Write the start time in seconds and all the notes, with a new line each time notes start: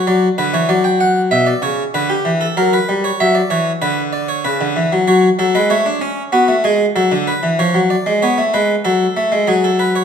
0.07 F#3 D5
0.38 D3 B4
0.54 E3 C#5
0.69 F#3 D5
0.84 G5
1.00 F#5
1.31 B2 E5
1.47 D5
1.62 C#3 C#5
1.94 D3 B4
2.10 G4
2.25 E3
2.41 A4
2.57 F#3 A#4
2.73 B4
2.89 G3
3.04 C#5
3.20 F#3 E5
3.35 D5
3.50 E3 C#5
3.82 D3 B4
4.13 D5
4.29 C#5
4.45 C#3 B4
4.61 D3
4.76 E3
4.92 F#3
5.08 F#3 C#5
5.39 F#3 A4
5.55 G#3 B4
5.70 A3 C#5
5.86 D4
6.01 C#4
6.32 B3 F#4
6.48 A3
6.64 G#3 G#4
6.96 F#3 A4
7.12 D3
7.27 B4
7.43 E3
7.59 F3 C#5
7.74 F#3
7.90 D5
8.06 G#3
8.22 B3 C#5
8.38 A3
8.54 G#3 B4
8.85 F#3 A4
9.17 A3
9.32 G#3
9.47 F#3 G#4
9.64 A4
9.79 B4
9.95 C#5